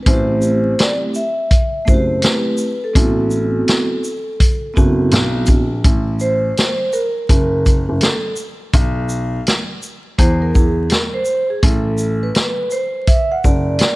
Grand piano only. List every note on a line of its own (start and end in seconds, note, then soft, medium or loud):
0.07 0.70 A1 loud
1.88 2.19 F#1 medium
2.96 3.59 A1 loud
4.77 5.09 F#1 medium
5.12 5.44 B1 medium
5.48 5.80 A#1 medium
5.85 6.49 A1 loud
7.30 7.82 F#1 medium
7.89 8.00 F#1 medium
8.74 9.38 B1 loud
10.19 10.50 E2 loud
10.56 10.87 E2 medium
11.63 12.27 A1 loud
13.45 13.76 F#1 medium